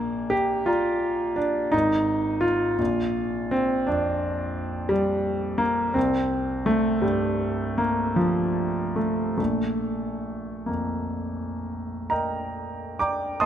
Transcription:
grand piano
Already playing: A#1 A#3
0.30 G4
0.66 F4 D5 A#5
1.36 D4
1.72 G#1 D#4 D#5 A#5
2.41 F4
2.79 A#1
3.51 C4
3.87 F2 D4
4.89 G3
5.58 A#3
5.94 C2 C4
6.66 A3
7.02 G2 G3
7.78 A#3
8.16 F3
8.96 A3
9.38 A#1 A3
10.66 F2 A#3
12.10 A#4 D#5 G5 A#5
12.99 D5 G5 A#5 D6
13.40 D#2 D#5 A5 C6 D#6

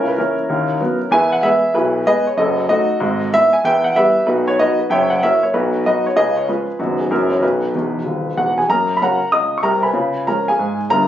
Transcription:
upright piano
Already playing: C#2 C#3 C#4 E4 A#4
0.08 B4
0.18 E3 A#3 C#4 E4 A#4
0.49 D#2 D#3
0.81 F#3 B3
1.11 E2 E3 B4 E5 G#5
1.32 F#5
1.43 G#3 B3 G#4 B4 E5
1.74 B1 B2 E4 G#4 B4
2.06 G#3 B3 G#4 B4 D#5
2.27 C#5
2.37 F#1 F#2 F#4 A4 D#5
2.68 A3 D#4 F#4 A4 D#5
3.00 G#1 G#2
3.33 G#3 B3 E4 E5
3.53 G#5
3.64 E2 E3 B4 E5 G5
3.84 F#5
3.96 G3 B3 E4 G4 B4 E5
4.26 B1 B2 D#4 F#4 B4
4.48 C#5
4.59 F#3 B3 D#4 F#4 B4 D#5
4.79 B4
4.90 F#1 F#2 C#5 E5 G5
5.10 F#5
5.22 F#3 A#3 E4 A#4 C#5 E5
5.43 C#5
5.54 B1 B2 D#4 F#4 B4
5.86 F#3 B3 D#4 F#4 B4 D#5
6.06 C#5
6.16 C#2 C#3 G#4 B4 D#5
6.37 C#5
6.48 F3 G#3 C#4 F4 G#4 B4
6.79 F#1 F#2 D#3 F#3 B3 D#4 F#4
6.99 G#4
7.11 F#1 F#2 E3 F#3 C#4 E4 F#4 A#4
7.32 C#5
7.42 B1 B2 D#4 F#4 B4
7.75 E1 E2
8.05 D#1 D#2
8.37 E1 E2 F#4 F#5
8.58 G#4 G#5
8.69 F#2 A#3 A#4 A#5
8.97 B5
9.01 C#3 F#3 C#4 A#4 F#5 A#5
9.32 C#2 D#5 D#6
9.58 C#6
9.63 C2 C3 A#4 A#5
9.83 B4 G#5 B5
9.94 C#3 F4
10.27 F3 G#3 C#4 A#4 A#5
10.48 G#4 F5 G#5
10.59 G#2
10.90 G1 G2 A#4 A#5

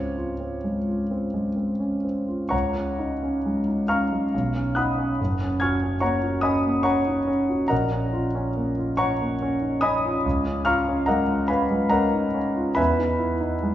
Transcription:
grand piano
Already playing: C#2 C4 C#5
0.17 F4
0.40 C4
0.64 G#3
0.89 F4
1.11 C4
1.34 G#3
1.57 C4
1.80 C#4
2.04 C4
2.28 F4
2.49 C#2 C#5 F#5 A#5 C#6
2.75 C#4
2.99 D#4
3.23 C#4
3.46 G#3
3.68 D#4
3.88 C#4 F5 A#5 C#6 F6
4.12 G#3
4.34 B1
4.55 C#4
4.75 D#4 F#5 B5 D#6 F#6
4.98 C#4
5.21 F#1
5.41 C#4
5.60 F#4 G#5 C#6 F6 G#6
5.83 C#4
6.00 A#3 C#5 F#5 A#5 C#6
6.24 F#4
6.41 C#4 D#5 G#5 B5 D#6
6.66 A#3
6.83 C#4 C#5 F#5 A#5 C#6
7.07 D#4
7.27 C#4
7.49 F#4
7.68 A#1 A#4 D#5 F#5 A#5
7.92 C#4
8.13 F4
8.35 C#4
8.56 A#3
8.78 F4
8.97 C#4 C#5 F#5 A#5 C#6
9.21 A#3
9.42 C#4
9.62 D#4
9.81 C#4 D#5 G#5 B5 D#6
10.05 F4
10.26 C#2
10.46 C#4
10.65 F4 F5 A#5 C#6 F6
10.88 C#4
11.06 G#3 A#4 D#5 F#5 A#5
11.29 F4
11.48 C#4 B4 F5 G#5 B5
11.71 G#3
11.90 C#4 A#4 D#5 F#5 A#5
12.14 D#4
12.34 C#4
12.56 F4
12.75 E2 B4 E5 G#5 B5
12.99 D#4
13.19 E4
13.41 D#4
13.63 G#3

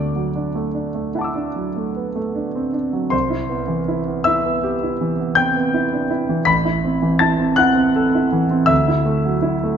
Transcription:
grand piano
Already playing: D2 A3 D4 D5 D6
0.16 F#3
0.36 D4
0.55 A3
0.75 D4
0.95 A3
1.15 E4 F#5 A5
1.21 D6 E6
1.35 D4
1.56 F#3
1.76 A3
1.96 B3
2.16 A3
2.35 D4
2.56 C4
2.73 D4
2.93 F#3
3.10 C2 C5 C6
3.30 E4
3.49 B3
3.68 E3
3.88 E4
4.08 B3
4.24 E4 E5 E6
4.45 B3
4.63 G4
4.83 E4
5.01 E3
5.20 B3
5.35 C4 G5 G6
5.56 B3
5.74 E4
5.93 D4
6.10 E4
6.29 E3
6.45 A1 B5 B6
6.65 E4
6.84 C4
7.02 E3
7.19 E4 A5 A6
7.39 C4
7.56 E4 F#5 F#6
7.75 C4
7.96 A4
8.15 E4
8.32 E3
8.51 C4
8.66 D2 E5 E6
8.88 E4
9.06 A3
9.25 F#3
9.42 E4
9.64 A3

